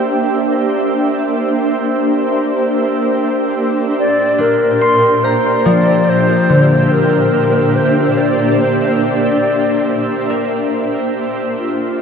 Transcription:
0, 0, Header, 1, 4, 480
1, 0, Start_track
1, 0, Tempo, 845070
1, 328, Time_signature, 4, 2, 24, 8
1, 6826, End_track
2, 0, Start_track
2, 0, Title_t, "Alto flute"
2, 0, Program_c, 0, 73
2, 2268, Note_on_c, 0, 74, 110
2, 2503, Note_on_c, 0, 70, 94
2, 2512, Note_off_c, 0, 74, 0
2, 2975, Note_on_c, 0, 72, 78
2, 2984, Note_off_c, 0, 70, 0
2, 3215, Note_on_c, 0, 74, 95
2, 3223, Note_off_c, 0, 72, 0
2, 3462, Note_on_c, 0, 72, 99
2, 3470, Note_off_c, 0, 74, 0
2, 3926, Note_on_c, 0, 70, 96
2, 3934, Note_off_c, 0, 72, 0
2, 4407, Note_on_c, 0, 72, 82
2, 4416, Note_off_c, 0, 70, 0
2, 4643, Note_on_c, 0, 74, 85
2, 4652, Note_off_c, 0, 72, 0
2, 4890, Note_on_c, 0, 72, 72
2, 4898, Note_off_c, 0, 74, 0
2, 5128, Note_off_c, 0, 72, 0
2, 5131, Note_on_c, 0, 74, 88
2, 5827, Note_off_c, 0, 74, 0
2, 6582, Note_on_c, 0, 65, 78
2, 6826, Note_off_c, 0, 65, 0
2, 6826, End_track
3, 0, Start_track
3, 0, Title_t, "Ambient pad"
3, 0, Program_c, 1, 92
3, 0, Note_on_c, 1, 58, 79
3, 0, Note_on_c, 1, 62, 81
3, 0, Note_on_c, 1, 67, 66
3, 0, Note_on_c, 1, 72, 69
3, 0, Note_on_c, 1, 76, 76
3, 2240, Note_on_c, 1, 46, 78
3, 2246, Note_off_c, 1, 72, 0
3, 2247, Note_off_c, 1, 62, 0
3, 2247, Note_off_c, 1, 76, 0
3, 2248, Note_off_c, 1, 67, 0
3, 2249, Note_off_c, 1, 58, 0
3, 2296, Note_on_c, 1, 58, 86
3, 2312, Note_on_c, 1, 67, 69
3, 2419, Note_on_c, 1, 62, 74
3, 2467, Note_on_c, 1, 72, 72
3, 2624, Note_on_c, 1, 76, 83
3, 6084, Note_off_c, 1, 46, 0
3, 6826, Note_off_c, 1, 58, 0
3, 6826, Note_off_c, 1, 62, 0
3, 6826, Note_off_c, 1, 67, 0
3, 6826, Note_off_c, 1, 72, 0
3, 6826, Note_off_c, 1, 76, 0
3, 6826, End_track
4, 0, Start_track
4, 0, Title_t, "Harp"
4, 0, Program_c, 2, 46
4, 2490, Note_on_c, 2, 62, 43
4, 2734, Note_on_c, 2, 84, 61
4, 2979, Note_on_c, 2, 82, 58
4, 3211, Note_on_c, 2, 53, 62
4, 3476, Note_off_c, 2, 84, 0
4, 3689, Note_on_c, 2, 50, 54
4, 3717, Note_off_c, 2, 53, 0
4, 4080, Note_off_c, 2, 62, 0
4, 4544, Note_off_c, 2, 82, 0
4, 5849, Note_on_c, 2, 70, 67
4, 5904, Note_off_c, 2, 50, 0
4, 6826, Note_off_c, 2, 70, 0
4, 6826, End_track
0, 0, End_of_file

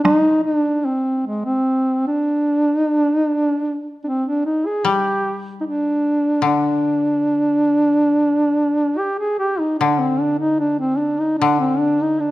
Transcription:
0, 0, Header, 1, 4, 480
1, 0, Start_track
1, 0, Tempo, 808625
1, 32, Time_signature, 2, 2, 24, 8
1, 1954, Tempo, 790514
1, 3874, Tempo, 845070
1, 5794, Tempo, 794702
1, 7291, End_track
2, 0, Start_track
2, 0, Title_t, "Duduk"
2, 0, Program_c, 0, 69
2, 24, Note_on_c, 0, 63, 93
2, 242, Note_off_c, 0, 63, 0
2, 260, Note_on_c, 0, 62, 82
2, 508, Note_on_c, 0, 60, 63
2, 517, Note_off_c, 0, 62, 0
2, 748, Note_off_c, 0, 60, 0
2, 751, Note_on_c, 0, 56, 57
2, 855, Note_off_c, 0, 56, 0
2, 859, Note_on_c, 0, 60, 65
2, 1208, Note_off_c, 0, 60, 0
2, 1230, Note_on_c, 0, 62, 75
2, 1646, Note_off_c, 0, 62, 0
2, 1646, Note_on_c, 0, 63, 75
2, 1729, Note_off_c, 0, 63, 0
2, 1729, Note_on_c, 0, 62, 75
2, 1871, Note_off_c, 0, 62, 0
2, 1871, Note_on_c, 0, 63, 75
2, 1954, Note_off_c, 0, 63, 0
2, 1954, Note_on_c, 0, 62, 75
2, 2375, Note_off_c, 0, 62, 0
2, 2409, Note_on_c, 0, 62, 49
2, 2417, Note_on_c, 0, 60, 58
2, 2426, Note_off_c, 0, 62, 0
2, 2539, Note_off_c, 0, 60, 0
2, 2543, Note_on_c, 0, 62, 66
2, 2658, Note_off_c, 0, 62, 0
2, 2661, Note_on_c, 0, 63, 61
2, 2785, Note_on_c, 0, 68, 66
2, 2794, Note_off_c, 0, 63, 0
2, 2906, Note_on_c, 0, 67, 78
2, 2916, Note_off_c, 0, 68, 0
2, 3223, Note_off_c, 0, 67, 0
2, 3360, Note_on_c, 0, 63, 52
2, 3371, Note_on_c, 0, 62, 72
2, 3380, Note_off_c, 0, 63, 0
2, 3860, Note_off_c, 0, 62, 0
2, 3864, Note_on_c, 0, 62, 72
2, 5310, Note_on_c, 0, 67, 59
2, 5318, Note_off_c, 0, 62, 0
2, 5425, Note_off_c, 0, 67, 0
2, 5429, Note_on_c, 0, 68, 59
2, 5538, Note_off_c, 0, 68, 0
2, 5541, Note_on_c, 0, 67, 61
2, 5658, Note_on_c, 0, 63, 54
2, 5667, Note_off_c, 0, 67, 0
2, 5764, Note_off_c, 0, 63, 0
2, 5768, Note_on_c, 0, 62, 68
2, 5889, Note_on_c, 0, 60, 59
2, 5899, Note_off_c, 0, 62, 0
2, 6020, Note_on_c, 0, 62, 65
2, 6029, Note_off_c, 0, 60, 0
2, 6126, Note_off_c, 0, 62, 0
2, 6130, Note_on_c, 0, 63, 70
2, 6250, Note_off_c, 0, 63, 0
2, 6253, Note_on_c, 0, 62, 59
2, 6371, Note_off_c, 0, 62, 0
2, 6374, Note_on_c, 0, 60, 62
2, 6486, Note_on_c, 0, 62, 60
2, 6495, Note_off_c, 0, 60, 0
2, 6618, Note_on_c, 0, 63, 62
2, 6627, Note_off_c, 0, 62, 0
2, 6726, Note_off_c, 0, 63, 0
2, 6730, Note_on_c, 0, 62, 77
2, 6853, Note_off_c, 0, 62, 0
2, 6859, Note_on_c, 0, 60, 69
2, 6975, Note_on_c, 0, 62, 78
2, 6985, Note_off_c, 0, 60, 0
2, 7114, Note_on_c, 0, 63, 68
2, 7123, Note_off_c, 0, 62, 0
2, 7222, Note_on_c, 0, 62, 67
2, 7231, Note_off_c, 0, 63, 0
2, 7291, Note_off_c, 0, 62, 0
2, 7291, End_track
3, 0, Start_track
3, 0, Title_t, "Koto"
3, 0, Program_c, 1, 107
3, 2897, Note_on_c, 1, 55, 40
3, 3853, Note_on_c, 1, 50, 41
3, 4348, Note_off_c, 1, 55, 0
3, 5313, Note_off_c, 1, 50, 0
3, 5778, Note_on_c, 1, 50, 44
3, 6742, Note_off_c, 1, 50, 0
3, 6749, Note_on_c, 1, 50, 45
3, 7291, Note_off_c, 1, 50, 0
3, 7291, End_track
4, 0, Start_track
4, 0, Title_t, "Taiko and cinematic ensemble drums"
4, 28, Note_on_c, 9, 37, 42
4, 28, Note_on_c, 9, 48, 44
4, 88, Note_off_c, 9, 37, 0
4, 88, Note_off_c, 9, 48, 0
4, 7291, End_track
0, 0, End_of_file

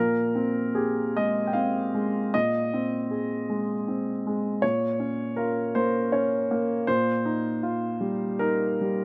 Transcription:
0, 0, Header, 1, 2, 480
1, 0, Start_track
1, 0, Tempo, 789474
1, 1423, Time_signature, 3, 2, 24, 8
1, 1892, Tempo, 750000
1, 4772, Tempo, 790514
1, 5642, End_track
2, 0, Start_track
2, 0, Title_t, "Grand piano"
2, 0, Program_c, 0, 0
2, 0, Note_on_c, 0, 46, 57
2, 0, Note_on_c, 0, 70, 81
2, 77, Control_c, 0, 64, 127
2, 215, Note_on_c, 0, 60, 47
2, 455, Note_on_c, 0, 68, 52
2, 456, Note_off_c, 0, 70, 0
2, 462, Note_on_c, 0, 67, 41
2, 602, Note_off_c, 0, 60, 0
2, 697, Note_off_c, 0, 68, 0
2, 708, Note_on_c, 0, 75, 71
2, 711, Note_on_c, 0, 56, 43
2, 846, Note_off_c, 0, 67, 0
2, 896, Note_on_c, 0, 79, 44
2, 901, Note_off_c, 0, 75, 0
2, 931, Note_on_c, 0, 77, 62
2, 940, Note_off_c, 0, 79, 0
2, 940, Note_on_c, 0, 60, 43
2, 1092, Note_off_c, 0, 56, 0
2, 1183, Note_on_c, 0, 56, 42
2, 1328, Note_off_c, 0, 60, 0
2, 1401, Note_off_c, 0, 46, 0
2, 1418, Note_off_c, 0, 77, 0
2, 1422, Note_on_c, 0, 75, 82
2, 1423, Note_off_c, 0, 56, 0
2, 1428, Note_on_c, 0, 46, 51
2, 1432, Control_c, 0, 64, 0
2, 1518, Control_c, 0, 64, 127
2, 1663, Note_on_c, 0, 60, 42
2, 1891, Note_on_c, 0, 68, 38
2, 2042, Note_off_c, 0, 60, 0
2, 2138, Note_on_c, 0, 56, 42
2, 2284, Note_off_c, 0, 68, 0
2, 2384, Note_on_c, 0, 60, 40
2, 2529, Note_off_c, 0, 56, 0
2, 2631, Note_on_c, 0, 56, 45
2, 2767, Note_off_c, 0, 60, 0
2, 2837, Note_off_c, 0, 46, 0
2, 2858, Note_on_c, 0, 73, 78
2, 2860, Note_off_c, 0, 75, 0
2, 2864, Note_off_c, 0, 56, 0
2, 2867, Note_on_c, 0, 46, 51
2, 2872, Control_c, 0, 64, 0
2, 2992, Control_c, 0, 64, 127
2, 3098, Note_on_c, 0, 61, 43
2, 3334, Note_on_c, 0, 70, 65
2, 3338, Note_off_c, 0, 73, 0
2, 3343, Note_on_c, 0, 65, 44
2, 3484, Note_off_c, 0, 61, 0
2, 3577, Note_off_c, 0, 70, 0
2, 3580, Note_on_c, 0, 72, 76
2, 3584, Note_on_c, 0, 58, 45
2, 3724, Note_off_c, 0, 65, 0
2, 3818, Note_off_c, 0, 72, 0
2, 3819, Note_on_c, 0, 73, 63
2, 3821, Note_on_c, 0, 61, 51
2, 3964, Note_off_c, 0, 58, 0
2, 4067, Note_on_c, 0, 58, 50
2, 4205, Note_off_c, 0, 61, 0
2, 4278, Note_off_c, 0, 46, 0
2, 4299, Note_on_c, 0, 72, 83
2, 4300, Note_off_c, 0, 73, 0
2, 4304, Note_off_c, 0, 58, 0
2, 4304, Note_on_c, 0, 46, 60
2, 4310, Control_c, 0, 64, 0
2, 4425, Control_c, 0, 64, 127
2, 4543, Note_on_c, 0, 63, 49
2, 4784, Note_on_c, 0, 65, 49
2, 4914, Note_off_c, 0, 63, 0
2, 5011, Note_on_c, 0, 55, 47
2, 5150, Note_off_c, 0, 65, 0
2, 5241, Note_off_c, 0, 72, 0
2, 5246, Note_on_c, 0, 70, 72
2, 5254, Note_on_c, 0, 63, 47
2, 5391, Note_off_c, 0, 55, 0
2, 5501, Note_on_c, 0, 55, 44
2, 5642, Note_off_c, 0, 46, 0
2, 5642, Note_off_c, 0, 55, 0
2, 5642, Note_off_c, 0, 63, 0
2, 5642, Note_off_c, 0, 70, 0
2, 5642, End_track
0, 0, End_of_file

